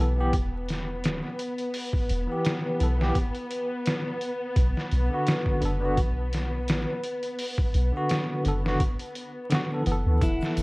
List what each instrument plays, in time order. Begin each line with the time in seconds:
Already playing: tine electric piano E3, string section B3
0.00 808-style bass B1, tine electric piano B3 A4
0.15 tine electric piano E3 B3
0.20 tine electric piano G4
0.33 808-style bass E1, kick, closed hi-hat
0.68 snare, closed hi-hat
1.04 808-style bass D1, snare, closed hi-hat
1.39 closed hi-hat
1.59 closed hi-hat
1.74 open hi-hat
1.93 kick
2.10 808-style bass E1, closed hi-hat
2.27 tine electric piano E3 B3
2.32 tine electric piano G4
2.45 snare, closed hi-hat
2.79 808-style bass B1, tine electric piano E3 B3, closed hi-hat
2.83 tine electric piano A4
2.98 tine electric piano E3 B3, snare
3.02 tine electric piano G4
3.15 kick, closed hi-hat
3.35 closed hi-hat
3.50 closed hi-hat
3.86 snare, closed hi-hat
4.21 closed hi-hat
4.56 808-style bass B1, kick, closed hi-hat
4.77 snare
4.92 808-style bass B1, closed hi-hat
5.10 tine electric piano D3 B3
5.14 tine electric piano F#4
5.27 snare, closed hi-hat
5.46 kick
5.60 808-style bass F#1, tine electric piano D3 B3, closed hi-hat
5.65 tine electric piano A4
5.80 tine electric piano D3 B3
5.85 tine electric piano F#4
5.97 808-style bass B1, kick, closed hi-hat
6.33 snare, closed hi-hat
6.68 808-style bass A1, snare, closed hi-hat
7.03 closed hi-hat
7.23 closed hi-hat
7.39 open hi-hat
7.58 kick
7.74 808-style bass B1, closed hi-hat
7.92 tine electric piano D3 B3
7.97 tine electric piano F#4
8.09 snare, closed hi-hat
8.43 808-style bass F#1, tine electric piano D3 B3, closed hi-hat
8.48 tine electric piano A4
8.63 tine electric piano D3 B3, snare
8.68 tine electric piano F#4
8.80 kick, closed hi-hat
8.99 closed hi-hat
9.15 closed hi-hat
9.50 tine electric piano D3 B3, snare, closed hi-hat
9.55 tine electric piano F#4
9.69 tine electric piano D3 B3
9.74 tine electric piano A4
9.82 tine electric piano E3, closed hi-hat
9.87 808-style bass F#1, tine electric piano B3
9.92 tine electric piano A4
10.06 808-style bass D2
10.21 808-style bass E1, clean electric guitar E4, string section F#5, kick, closed hi-hat, shaker
10.41 snare, shaker
10.57 808-style bass E1, closed hi-hat, shaker